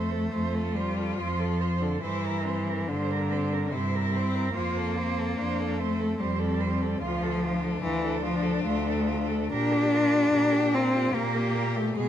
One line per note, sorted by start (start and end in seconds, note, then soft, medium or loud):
0.00 0.22 F2 medium
0.00 0.77 A3 medium
0.00 0.12 C5 soft
0.10 0.31 A4 soft
0.32 1.08 F2 medium
0.32 1.98 F4 medium
0.32 0.56 C5 soft
0.55 0.77 A4 soft
0.76 1.20 G3 medium
0.76 0.99 C5 soft
0.97 1.18 A4 soft
1.18 1.92 F2 medium
1.18 1.82 F3 medium
1.18 1.42 C5 soft
1.40 1.62 A4 soft
1.61 1.84 C5 soft
1.81 2.02 D3 medium
1.81 2.02 A4 soft
2.02 2.78 G2 soft
2.02 2.90 E3 medium
2.02 2.46 E4 medium
2.02 2.27 C5 soft
2.25 2.49 A#4 soft
2.45 2.89 C4 medium
2.45 2.70 C5 soft
2.69 2.89 A#4 soft
2.88 3.62 G2 medium
2.88 3.74 D3 medium
2.88 3.32 A#3 soft
2.88 3.13 C5 soft
3.11 3.34 A#4 soft
3.30 3.74 C4 soft
3.30 3.54 C5 soft
3.53 3.73 A#4 soft
3.72 4.45 G2 medium
3.72 4.15 C3 medium
3.72 4.54 E4 medium
3.72 3.96 C5 soft
3.95 4.17 A#4 soft
4.13 4.54 C4 medium
4.13 4.37 C5 soft
4.36 4.55 A#4 soft
4.55 5.28 F2 medium
4.55 5.81 A#3 medium
4.55 4.97 F4 medium
4.55 4.79 C5 soft
4.77 4.99 A4 soft
4.96 5.39 C4 medium
4.96 5.20 C5 medium
5.18 5.38 A4 soft
5.37 6.10 F2 medium
5.37 5.79 D4 medium
5.37 5.62 C5 soft
5.60 5.81 A4 soft
5.77 6.21 A3 medium
5.77 6.18 C4 medium
5.77 6.01 C5 soft
6.00 6.19 A4 soft
6.18 6.92 F2 medium
6.18 7.01 G3 medium
6.18 7.03 C4 medium
6.18 6.41 C5 soft
6.39 6.62 A4 soft
6.61 6.83 C5 soft
6.82 7.01 A4 soft
7.01 7.73 D2 medium
7.01 7.81 F3 medium
7.01 7.43 F4 medium
7.01 7.24 F4 medium
7.23 7.45 A4 soft
7.42 9.52 D4 medium
7.42 7.65 F4 soft
7.64 7.82 A4 soft
7.83 8.55 D2 medium
7.83 8.23 E3 medium
7.83 8.05 F4 soft
8.04 8.24 A4 soft
8.23 8.64 F3 medium
8.23 8.44 F4 medium
8.43 8.64 A4 medium
8.64 9.42 D2 medium
8.64 9.51 A3 medium
8.64 8.88 F4 medium
8.87 9.09 A4 soft
9.07 9.30 F4 soft
9.29 9.50 A4 soft
9.51 10.24 A#2 medium
9.51 10.76 D4 loud
9.51 9.96 G4 medium
9.51 9.74 A#4 medium
9.73 9.95 G4 medium
9.93 10.36 F4 medium
9.93 10.15 A#4 soft
10.14 10.32 G4 soft
10.33 11.05 A#2 medium
10.33 10.76 G4 medium
10.33 10.54 A#4 soft
10.52 10.74 G4 medium
10.72 11.16 C4 medium
10.72 11.15 F4 medium
10.72 10.95 A#4 soft
10.94 11.14 G4 soft
11.14 11.86 A#2 medium
11.14 11.78 A#3 medium
11.14 11.95 G4 medium
11.14 11.36 A#4 medium
11.35 11.57 G4 medium
11.55 11.78 A#4 medium
11.76 11.97 A3 medium
11.76 11.96 G4 soft
11.96 12.09 B2 medium
11.96 12.09 G#3 loud
11.96 12.09 B3 medium
11.96 12.09 G#4 medium